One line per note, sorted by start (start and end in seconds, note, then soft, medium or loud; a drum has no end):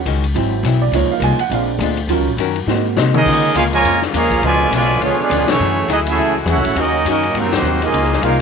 0.05 0.34 C#2 loud
0.05 0.25 D#3 medium
0.05 0.25 G#3 medium
0.05 0.25 C#4 medium
0.05 0.25 F#4 medium
0.05 hi-hat pedal medium
0.05 ride medium
0.24 ride medium
0.34 0.62 G#1 medium
0.34 0.54 G#2 medium
0.34 0.90 F#3 medium
0.34 0.54 F#3 medium
0.34 0.90 C4 soft
0.34 0.55 C4 medium
0.34 0.91 E4 soft
0.34 0.55 E4 medium
0.34 ride medium
0.63 0.91 B1 loud
0.63 0.83 G#2 medium
0.63 0.83 F#3 medium
0.63 0.84 C4 medium
0.63 hi-hat pedal medium
0.63 ride medium
0.67 0.84 E4 medium
0.82 0.93 D5 medium
0.92 1.08 C#2 medium
0.92 1.12 C#3 medium
0.92 1.37 F3 medium
0.92 1.13 G#3 medium
0.92 1.38 A#3 soft
0.92 1.38 D#4 medium
0.92 1.11 C#5 medium
0.92 ride medium
0.96 1.13 A#3 medium
0.96 1.14 F4 medium
1.09 1.22 F5 medium
1.09 muted upright bass stroke soft
1.20 1.36 C2 loud
1.20 1.41 C#3 medium
1.20 1.41 G#3 medium
1.20 1.41 A#3 medium
1.20 1.42 F4 medium
1.20 1.40 G#5 loud
1.20 hi-hat pedal medium
1.20 ride medium
1.37 1.51 F#5 medium
1.37 muted upright bass stroke soft
1.37 ride medium
1.50 1.78 A#1 medium
1.50 1.70 A#2 medium
1.50 1.95 G#3 medium
1.50 1.70 G#3 medium
1.50 1.96 C4 soft
1.50 1.96 D4 medium
1.50 1.71 D4 soft
1.50 1.63 F5 medium
1.50 ride medium
1.54 1.71 F4 medium
1.79 2.07 D2 loud
1.79 1.99 A#2 medium
1.79 2.00 G#3 medium
1.79 2.00 D4 medium
1.79 2.00 F4 medium
1.79 hi-hat pedal medium
1.79 ride medium
1.97 ride medium
2.07 2.18 D#2 medium
2.07 2.28 D#3 medium
2.07 2.30 F#3 medium
2.07 2.31 C#4 medium
2.07 2.28 C#4 medium
2.07 2.31 F4 medium
2.07 2.29 F#4 medium
2.07 ride medium
2.12 2.29 A#4 medium
2.18 2.26 C#2 medium
2.27 2.36 A#1 medium
2.37 2.66 F#2 loud
2.37 2.57 D#3 medium
2.37 2.58 C#4 medium
2.37 2.58 F#4 loud
2.37 2.58 A#4 loud
2.37 hi-hat pedal medium
2.37 ride medium
2.56 ride medium
2.66 2.95 G#2 medium
2.66 2.86 G#3 medium
2.66 3.23 A#3 soft
2.66 3.24 C4 soft
2.66 2.87 D#4 medium
2.66 3.24 F#4 medium
2.66 2.87 F#4 medium
2.66 2.87 C5 medium
2.66 snare medium
2.96 3.25 C3 loud
2.96 3.16 G#3 medium
2.96 3.16 D#4 medium
2.96 3.16 F#4 medium
2.96 3.16 C5 medium
2.96 snare loud
2.96 hi-hat pedal medium
3.14 3.53 G#3 medium
3.14 3.53 A#3 medium
3.14 3.53 C#4 medium
3.14 3.52 D#4 medium
3.14 3.53 G#4 loud
3.14 3.53 A#4 medium
3.14 3.53 D#5 loud
3.14 mid tom medium
3.26 3.54 C#3 medium
3.26 3.45 C#3 soft
3.26 4.42 C#3 medium
3.26 4.42 G#3 medium
3.26 3.45 G#3 soft
3.26 4.42 A#3 medium
3.26 3.45 A#3 medium
3.26 5.57 F4 medium
3.26 3.46 F4 medium
3.26 kick medium
3.26 crash loud
3.54 3.83 C#2 medium
3.54 3.74 C#3 medium
3.54 3.74 G#3 medium
3.54 3.63 G#3 medium
3.54 3.63 A#3 medium
3.54 3.74 A#3 medium
3.54 3.64 C#4 loud
3.54 3.64 F4 medium
3.54 3.75 F4 medium
3.54 3.64 G#4 medium
3.54 3.65 A#4 medium
3.54 3.64 F5 loud
3.54 hi-hat pedal medium
3.54 ride medium
3.73 4.00 A#2 medium
3.73 4.00 F3 medium
3.73 4.00 G#3 medium
3.73 4.01 F4 loud
3.73 4.01 A#4 loud
3.73 4.00 C#5 loud
3.73 4.01 G#5 loud
3.73 ride medium
3.83 4.12 F2 medium
3.83 4.03 C#3 medium
3.83 4.03 G#3 soft
3.83 4.04 A#3 medium
3.83 4.04 F4 medium
3.83 ride medium
4.02 snare medium
4.13 4.41 D#2 loud
4.13 4.41 A#2 medium
4.13 4.32 C#3 medium
4.13 4.41 F3 medium
4.13 4.33 G#3 medium
4.13 4.41 A#3 medium
4.13 4.33 A#3 medium
4.13 4.33 F4 medium
4.13 4.42 G#4 medium
4.13 4.42 C#5 medium
4.13 4.42 F5 loud
4.13 4.42 A#5 loud
4.13 hi-hat pedal medium
4.13 ride medium
4.31 kick medium
4.31 ride medium
4.42 4.70 C#2 loud
4.42 4.71 B2 medium
4.42 4.61 C#3 soft
4.42 5.59 D3 medium
4.42 4.62 F3 medium
4.42 4.71 F3 loud
4.42 4.71 G#3 loud
4.42 5.59 B3 medium
4.42 4.62 B3 medium
4.42 5.59 C#4 medium
4.42 4.62 D4 medium
4.42 4.72 F4 medium
4.42 4.72 B4 medium
4.42 4.72 D5 loud
4.42 4.71 G#5 loud
4.42 ride medium
4.71 5.00 B1 loud
4.71 5.00 B2 loud
4.71 4.91 C#3 medium
4.71 4.91 F3 medium
4.71 5.00 F3 medium
4.71 5.00 G#3 medium
4.71 4.91 B3 medium
4.71 4.91 D4 medium
4.71 hi-hat pedal medium
4.71 ride medium
4.75 5.01 F4 medium
4.75 5.01 B4 medium
4.75 5.01 D5 loud
4.75 5.01 G#5 loud
5.01 5.17 C#2 medium
5.01 5.20 C#3 soft
5.01 5.20 F3 medium
5.01 5.18 F3 medium
5.01 5.18 G#3 medium
5.01 5.20 B3 medium
5.01 5.19 B3 medium
5.01 5.18 C#4 loud
5.01 5.21 D4 medium
5.01 5.19 F4 medium
5.01 5.19 G#4 medium
5.01 5.19 C#5 loud
5.01 ride medium
5.18 5.48 G#3 medium
5.18 5.48 B3 medium
5.18 5.49 B3 medium
5.18 5.48 D4 medium
5.18 5.49 F4 medium
5.18 5.49 G#4 loud
5.18 5.49 D5 loud
5.18 muted upright bass stroke soft
5.30 5.40 D2 loud
5.30 5.49 C#3 medium
5.30 5.50 F3 medium
5.30 5.50 B3 medium
5.30 5.50 D4 medium
5.30 hi-hat pedal medium
5.30 ride medium
5.40 5.49 C#2 medium
5.48 5.59 B1 medium
5.48 5.86 E3 medium
5.48 5.86 A3 medium
5.48 5.88 A3 medium
5.48 5.86 C#4 medium
5.48 5.87 E4 medium
5.48 5.88 G#4 medium
5.48 5.87 C#5 loud
5.48 snare loud
5.48 ride medium
5.59 5.88 F#2 medium
5.59 6.76 E3 medium
5.59 5.78 F#3 medium
5.59 6.75 G#3 medium
5.59 6.75 A3 medium
5.59 5.79 A3 medium
5.59 5.79 E4 medium
5.59 6.75 F#4 medium
5.59 5.79 G#4 medium
5.88 6.17 D2 loud
5.88 6.08 F#3 medium
5.88 6.08 A3 medium
5.88 5.99 B3 medium
5.88 5.97 D#4 medium
5.88 6.08 E4 medium
5.88 6.08 G#4 medium
5.88 5.99 G#4 medium
5.88 5.99 D#5 loud
5.88 hi-hat pedal medium
5.88 ride medium
5.92 5.99 E4 medium
6.06 6.34 A3 medium
6.06 6.34 C#4 medium
6.06 6.35 C#4 medium
6.06 6.34 E4 medium
6.06 6.35 G#4 loud
6.06 6.36 A4 loud
6.06 6.35 E5 loud
6.06 ride medium
6.17 6.45 C#2 medium
6.17 6.37 F#3 soft
6.17 6.37 A3 medium
6.17 6.37 E4 medium
6.17 6.38 G#4 medium
6.46 6.56 E2 loud
6.46 6.66 F#3 medium
6.46 6.66 A3 medium
6.46 6.76 A3 medium
6.46 6.75 C#4 medium
6.46 6.67 E4 medium
6.46 6.76 F#4 medium
6.46 6.67 G#4 medium
6.46 hi-hat pedal medium
6.46 ride medium
6.51 6.77 E4 medium
6.51 6.76 A4 medium
6.51 6.77 C#5 medium
6.51 6.76 F#5 medium
6.56 6.65 C#2 medium
6.64 6.75 A1 medium
6.64 ride medium
6.76 7.04 D#2 loud
6.76 7.35 C#3 medium
6.76 6.95 D#3 soft
6.76 7.93 F#3 medium
6.76 7.06 F#3 medium
6.76 8.42 A#3 medium
6.76 6.95 A#3 medium
6.76 7.06 A#3 medium
6.76 6.96 C#4 medium
6.76 7.07 C#4 medium
6.76 7.34 D#4 medium
6.76 7.06 D#4 medium
6.76 6.96 F#4 medium
6.76 ride medium
6.80 7.07 F#4 medium
6.80 7.07 A#4 medium
6.80 7.07 D#5 loud
7.05 7.34 F#2 loud
7.05 7.24 D#3 medium
7.05 7.34 F#3 medium
7.05 7.24 A#3 medium
7.05 7.34 A#3 medium
7.05 7.25 C#4 medium
7.05 7.34 D#4 medium
7.05 7.25 F#4 medium
7.05 hi-hat pedal medium
7.05 ride medium
7.09 7.35 C#4 loud
7.09 7.35 F#4 medium
7.09 7.35 A#4 medium
7.09 7.35 D#5 loud
7.23 ride medium
7.34 7.44 G#2 medium
7.34 7.54 G#2 soft
7.34 7.92 C3 medium
7.34 7.53 D#3 medium
7.34 7.54 F#3 soft
7.34 7.53 F#3 medium
7.34 7.53 A#3 medium
7.34 7.54 C4 medium
7.34 7.92 F4 medium
7.34 7.55 F4 medium
7.34 ride medium
7.39 7.54 F#3 medium
7.39 7.54 C4 medium
7.39 7.54 D#4 medium
7.39 7.54 A#4 medium
7.44 7.53 F#2 medium
7.52 7.62 D#2 medium
7.52 7.80 D#3 medium
7.52 7.80 F#3 medium
7.52 7.81 A#3 medium
7.52 7.80 C4 medium
7.52 7.81 D#4 medium
7.52 7.81 F#4 medium
7.52 7.81 C5 medium
7.52 snare loud
7.52 ride medium
7.62 7.91 D#2 loud
7.62 7.83 G#2 medium
7.62 7.83 F#3 medium
7.62 hi-hat pedal medium
7.66 7.84 C4 medium
7.66 7.84 F4 medium
7.82 8.20 G#3 medium
7.82 8.20 A#3 medium
7.82 8.21 A#3 medium
7.82 8.20 D#4 medium
7.82 8.21 F4 medium
7.82 8.21 G#4 medium
7.82 8.21 D#5 loud
7.82 ride medium
7.92 8.21 C#2 loud
7.92 8.12 C#3 soft
7.92 8.42 C#3 medium
7.92 8.42 F3 medium
7.92 8.12 A#3 soft
7.92 8.42 D#4 medium
7.92 8.12 D#4 medium
7.92 8.13 F4 medium
7.92 ride medium
8.03 snare soft
8.13 snare medium
8.21 8.42 C2 loud
8.21 8.41 C#3 medium
8.21 8.39 G#3 medium
8.21 8.39 A#3 medium
8.21 8.42 A#3 medium
8.21 8.42 D#4 medium
8.21 8.40 D#4 medium
8.21 8.39 F4 medium
8.21 8.42 F4 medium
8.21 8.40 G#4 medium
8.21 8.39 A#4 medium
8.21 8.40 F5 loud
8.21 hi-hat pedal medium
8.21 ride medium